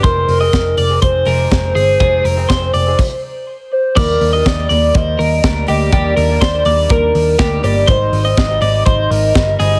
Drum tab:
CC |--------|----x---|x-------|--------|
HH |xoxoxoxo|xoxo----|-oxoxoxo|xoxoxoxo|
SD |--o---o-|--o-----|--o---o-|--o---o-|
BD |o-o-o-o-|o-o-o---|o-o-o-o-|o-o-o-o-|

CC |--------|
HH |xoxoxoxo|
SD |--o---o-|
BD |o-o-o-o-|